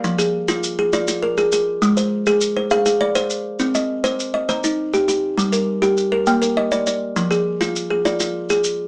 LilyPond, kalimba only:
\new Staff \with { instrumentName = "Kalimba" } { \time 12/8 \key f \dorian \tempo 4. = 135 << { f''8 aes'4. r8 aes'8 d''8 f'8 bes'4 aes'4~ | aes'8 c''4. r8 c''8 f''8 aes'8 d''4. r8 | r8 ees''4. r8 ees''8 c''8 ees'4. g'4~ | g'8 bes'4. r8 bes'8 g''8 bes'8 ees''4 d''4~ |
d''8 aes'4. r8 aes'8 d''8 f'4. r4 | } \\ { f4 r8 f'4 r8 f'4 r8 aes'4 r8 | aes4 r8 aes'4 r8 aes'4 r8 c''4 r8 | c'4 r8 c''4 r8 ees4 r8 g'4 r8 | g4 r8 g'4 r8 bes4 r8 d''4 r8 |
f4 r8 f'4 r8 f'4 r8 aes'4 r8 | } >> }